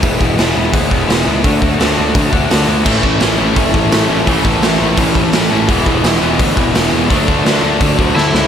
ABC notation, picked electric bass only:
X:1
M:4/4
L:1/8
Q:1/4=170
K:A
V:1 name="Picked electric bass" clef=bass
E,,, E,,, E,,, E,,, D,, E,,, E,,, C,, | D,, D,, D,, D,, D,, D,, D,, D,, | A,,, A,,, A,,, A,,, F,,, A,,, A,,, A,,, | A,,, A,,, A,,, A,,, A,,, A,,, A,,, A,,, |
E,,, E,,, E,,, E,,, D,, E,,, E,,, E,,, | D,, D,, D,, D,, D,, D,, D,, C,, |]